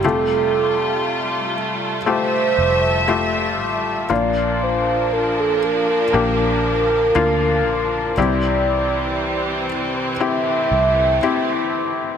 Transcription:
0.00 2.54 F1 medium
0.00 4.07 G3 soft
0.00 4.07 A3 medium
0.00 2.05 F4 medium
0.04 1.53 C3 soft
0.04 1.97 A3 medium
0.04 1.97 F4 medium
0.04 1.97 G4 medium
0.04 1.58 A4 medium
2.06 3.03 A3 medium
2.06 3.04 F4 medium
2.06 3.04 G4 medium
2.06 3.56 C5 loud
2.06 4.08 E5 medium
2.58 3.59 F1 medium
3.08 4.05 A3 medium
3.08 4.05 F4 medium
3.08 4.05 G4 medium
3.59 4.07 A1 medium
4.09 6.10 A#1 medium
4.09 5.59 A#2 medium
4.09 5.59 F3 medium
4.09 8.13 F3 medium
4.09 6.03 A#3 medium
4.09 8.14 A#3 medium
4.09 6.03 D4 medium
4.09 8.14 D4 medium
4.09 6.04 F4 medium
4.09 4.65 D5 loud
4.63 5.14 C5 medium
5.13 5.41 A#4 medium
5.39 5.66 A4 medium
5.64 8.17 A#4 loud
6.13 7.11 A#1 medium
6.13 7.10 A#3 medium
6.13 7.10 D4 medium
6.13 7.11 G4 medium
7.15 7.66 D2 medium
7.15 8.12 A#3 medium
7.15 8.12 D4 medium
7.15 8.12 F4 medium
7.66 8.14 A#1 medium
8.17 10.67 C2 medium
8.17 9.66 C3 medium
8.17 12.17 E3 medium
8.17 10.18 G3 medium
8.17 9.66 G3 medium
8.17 12.17 C4 medium
8.17 10.11 C4 medium
8.17 10.11 E4 medium
8.17 10.11 G4 medium
8.17 9.66 D5 medium
10.20 12.17 A3 medium
10.20 11.17 C4 medium
10.20 11.17 E4 medium
10.20 11.18 G4 medium
10.20 11.70 E5 loud
10.71 11.19 C2 medium
11.23 12.17 C4 medium
11.23 12.17 E4 medium
11.23 12.17 G4 medium

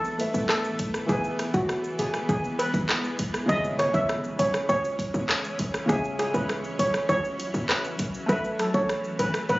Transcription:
0.00 0.26 A1 medium
0.00 3.45 E3 medium
0.00 0.15 A3 medium
0.00 1.07 A3 medium
0.00 1.07 B3 medium
0.00 0.16 A4 medium
0.00 0.31 A4 loud
0.00 0.17 B4 medium
0.00 0.18 E5 medium
0.04 shaker medium
0.18 1.08 A3 medium
0.18 1.09 A4 medium
0.18 1.09 B4 soft
0.18 1.10 E5 medium
0.18 closed hi-hat medium
0.18 shaker medium
0.34 0.46 B1 loud
0.34 shaker medium
0.49 0.91 A4 medium
0.49 cross-stick loud
0.49 clap loud
0.49 shaker medium
0.64 shaker soft
0.79 kick medium
0.79 closed hi-hat medium
0.79 shaker medium
0.94 cross-stick medium
0.94 shaker medium
1.06 1.34 E1 loud
1.06 3.44 E3 medium
1.06 3.47 G#3 medium
1.06 3.47 B3 medium
1.06 3.45 E4 medium
1.06 1.20 G#4 loud
1.06 3.46 G#4 medium
1.06 kick loud
1.06 shaker medium
1.12 3.47 B4 medium
1.24 shaker medium
1.39 cross-stick medium
1.39 closed hi-hat medium
1.39 shaker soft
1.54 1.79 F#1 loud
1.54 1.64 F#4 medium
1.54 kick loud
1.54 shaker medium
1.69 cross-stick loud
1.69 shaker medium
1.84 shaker soft
1.99 2.11 E1 medium
1.99 2.10 G#4 medium
1.99 closed hi-hat medium
1.99 shaker medium
2.14 cross-stick medium
2.14 shaker medium
2.29 2.66 F#1 loud
2.29 2.40 G#4 medium
2.29 kick medium
2.29 shaker medium
2.44 shaker medium
2.59 2.69 B4 medium
2.59 closed hi-hat medium
2.59 shaker medium
2.74 2.86 G#1 medium
2.74 kick medium
2.74 shaker medium
2.89 cross-stick loud
2.89 clap loud
2.89 shaker medium
3.04 shaker soft
3.19 kick medium
3.19 closed hi-hat medium
3.19 shaker medium
3.34 cross-stick medium
3.34 shaker medium
3.46 3.74 C#2 loud
3.46 5.84 C#3 medium
3.46 9.59 E3 medium
3.46 5.87 G#3 medium
3.46 5.85 C#4 medium
3.46 8.25 C#4 medium
3.46 5.86 G#4 medium
3.46 3.60 D#5 medium
3.46 kick loud
3.46 impact medium
3.46 high bongo medium
3.46 shaker medium
3.52 5.87 E5 medium
3.64 shaker medium
3.79 3.89 C#5 medium
3.79 cross-stick medium
3.79 closed hi-hat medium
3.79 shaker medium
3.94 4.19 C#2 medium
3.94 4.15 E5 medium
3.94 kick loud
3.94 shaker medium
4.09 cross-stick loud
4.09 shaker medium
4.24 shaker soft
4.39 4.51 B1 loud
4.39 4.60 C#5 medium
4.39 closed hi-hat medium
4.39 shaker medium
4.54 cross-stick loud
4.54 shaker medium
4.69 5.06 C#2 loud
4.69 5.11 C#5 loud
4.69 high bongo medium
4.69 shaker medium
4.84 shaker medium
4.99 kick medium
4.99 closed hi-hat medium
4.99 high bongo medium
4.99 shaker soft
5.14 5.26 D#2 medium
5.14 shaker medium
5.29 cross-stick loud
5.29 clap loud
5.29 shaker medium
5.44 shaker medium
5.59 kick medium
5.59 closed hi-hat medium
5.59 low bongo medium
5.59 shaker medium
5.74 cross-stick medium
5.74 shaker medium
5.86 6.14 C#2 loud
5.86 8.24 C#3 medium
5.86 8.27 F#3 medium
5.86 8.25 C#4 medium
5.86 5.99 G#4 loud
5.86 8.26 G#4 medium
5.86 kick loud
5.86 high bongo medium
5.86 shaker medium
5.92 8.27 E5 medium
6.04 shaker medium
6.19 6.30 G#4 medium
6.19 cross-stick medium
6.19 closed hi-hat medium
6.19 shaker medium
6.34 6.59 C#2 loud
6.34 6.55 B4 medium
6.34 shaker medium
6.49 cross-stick loud
6.49 shaker medium
6.64 shaker soft
6.79 6.91 B1 medium
6.79 7.00 C#5 medium
6.79 closed hi-hat medium
6.79 shaker medium
6.94 cross-stick medium
6.94 shaker medium
7.09 7.46 C#2 loud
7.09 7.51 C#5 loud
7.09 kick loud
7.09 high bongo medium
7.09 shaker medium
7.25 shaker medium
7.39 closed hi-hat medium
7.39 high bongo medium
7.39 shaker medium
7.54 7.66 D#2 loud
7.54 shaker medium
7.69 8.11 B4 medium
7.69 cross-stick loud
7.69 clap loud
7.69 shaker medium
7.84 shaker medium
7.99 kick medium
7.99 closed hi-hat medium
7.99 low bongo medium
7.99 shaker medium
8.14 shaker medium
8.26 8.54 A1 loud
8.26 9.59 A3 medium
8.26 9.59 B3 medium
8.26 9.59 A4 medium
8.26 8.40 B4 loud
8.26 kick loud
8.26 high bongo medium
8.26 shaker medium
8.30 9.59 B4 medium
8.30 9.59 E5 medium
8.44 shaker medium
8.59 8.70 A4 medium
8.59 cross-stick medium
8.59 closed hi-hat medium
8.59 shaker soft
8.74 8.99 A1 loud
8.74 8.95 C#5 medium
8.74 kick loud
8.74 shaker medium
8.89 cross-stick loud
8.89 shaker medium
9.04 shaker medium
9.19 9.31 G#1 medium
9.19 9.40 B4 medium
9.19 closed hi-hat medium
9.19 shaker medium
9.34 cross-stick loud
9.34 shaker medium
9.49 9.59 A1 loud
9.49 9.59 B4 loud
9.49 high bongo medium
9.49 shaker medium

